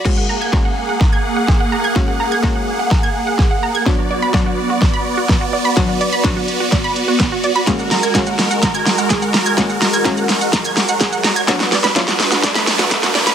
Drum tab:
CC |x---------------|----------------|----------------|----------------|
HH |----------------|----------------|----------------|x-x-x-x-x-x-x-x-|
SH |----------------|----------------|----------------|----------------|
SD |o---o---o---o---|o---o---o---o---|o---o---o---o---|o---o---o---o---|
BD |o---o---o---o---|o---o---o---o---|o---o---o---o---|o---o---o---o---|

CC |----------------|----------------|----------------|
HH |x-o-x-o-x-o-x-o-|x-o-x-o-x-o-x-o-|x-o-x-o-x-o-x-o-|
SH |xxxxxxxxxxxxxxxx|xxxxxxxxxxxxxxxx|xxxxxxxxxxxxxxxx|
SD |o-o-o-o-o-o-o-o-|o-o-o-o-o-o-o-o-|oooooooooooooooo|
BD |o---o---o---o---|o---o---o---o---|o---o---o---o---|